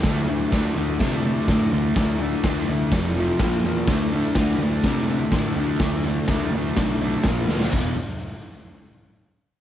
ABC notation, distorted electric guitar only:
X:1
M:4/4
L:1/8
Q:1/4=125
K:Dmix
V:1 name="Distorted electric guitar"
[D,A,D] [D,A,D] [D,A,D] [D,A,D] [D,A,D] [D,A,D] [D,A,D] [D,A,D] | [D,A,D] [D,A,D] [D,A,D] [D,A,D] [=F,,C,=F,] [F,,C,F,] [^A,,^E,^A,] [A,,E,A,] | [D,A,D] [D,A,D] [D,A,D] [D,A,D] [D,A,D] [D,A,D] [D,A,D] [D,A,D] | [D,A,D] [D,A,D] [D,A,D] [D,A,D] [D,A,D] [D,A,D] [^A,,^E,^A,] [A,,E,A,] |
[E,,B,,E,] z6 z |]